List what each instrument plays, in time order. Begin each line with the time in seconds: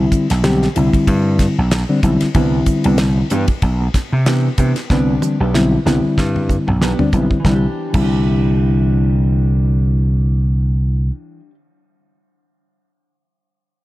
Already playing: reed electric piano D3 G3 C4 E4
0.12 kick, hi-hat pedal, ride
0.30 slap bass B1, snare, ride
0.43 reed electric piano D3 G3 C4 G4, snare, ride
0.62 snare
0.76 slap bass C2, reed electric piano D3 G3 C4 E4, hi-hat pedal, ride
0.93 muted slap bass stroke, kick, ride
1.07 slap bass G2, kick, ride
1.39 kick, snare, hi-hat pedal, ride
1.58 slap bass B1
1.71 snare, ride
1.89 reed electric piano D3 G3 C4 D4
2.03 slap bass B1, reed electric piano D3 G3 C4 E4, kick, hi-hat pedal, ride
2.21 muted slap bass stroke, snare, ride
2.35 slap bass C2, reed electric piano D3 G3 C4 E4, clean electric guitar E3 B3 D4 G4, kick, ride
2.66 muted clean electric guitar stroke, kick, hi-hat pedal, ride
2.84 slap bass C2, clean electric guitar B3 D4 G4, ride
2.98 snare, ride
3.18 muted clean electric guitar stroke
3.30 slap bass G2, clean electric guitar E3 B3 D4 G4, hi-hat pedal, ride
3.48 muted clean electric guitar stroke, kick, ride
3.62 slap bass B1, kick, ride
3.81 muted clean electric guitar stroke
3.94 muted slap bass stroke, muted clean electric guitar stroke, kick, snare, hi-hat pedal, ride
4.13 slap bass C3, muted clean electric guitar stroke
4.26 clean electric guitar E3 B3 D4 G4, snare, ride
4.58 slap bass C3, clean electric guitar E3 B3 D4 G4, kick, hi-hat pedal, ride
4.76 muted clean electric guitar stroke, snare, ride
4.90 slap bass C2, reed electric piano D3 G3 C4 D4, clean electric guitar E3 B3 D4 G4, kick, snare
5.22 muted clean electric guitar stroke, hi-hat pedal, high tom
5.40 slap bass B1, clean electric guitar B3 D4 G4
5.54 reed electric piano D3 G3 C4 E4, muted clean electric guitar stroke, snare
5.72 muted clean electric guitar stroke
5.86 slap bass C2, reed electric piano D3 G3 C4 E4, clean electric guitar E3 B3 D4 G4, snare, hi-hat pedal
6.04 muted clean electric guitar stroke, muted slap bass stroke
6.18 slap bass G2, kick, snare
6.36 muted clean electric guitar stroke, mid tom
6.49 muted clean electric guitar stroke, kick, hi-hat pedal
6.67 slap bass B1, muted clean electric guitar stroke, mid tom
6.81 clean electric guitar E3 B3 D4 G4, snare
6.99 reed electric piano D3 G3 C4 D4, floor tom
7.12 slap bass B1, reed electric piano D3 G3 C4 E4, clean electric guitar E3 B3 D4 G4, kick, hi-hat pedal
7.31 muted slap bass stroke, muted clean electric guitar stroke, kick
7.40 reed electric piano D3, clean electric guitar E3
7.45 slap bass C2, reed electric piano G3 C4 E4, kick, snare
7.50 clean electric guitar D4
7.55 clean electric guitar G4
7.90 reed electric piano D3, clean electric guitar E3
7.94 slap bass C2, reed electric piano G3 C4 E4, kick, crash
8.00 clean electric guitar D4
8.04 clean electric guitar G4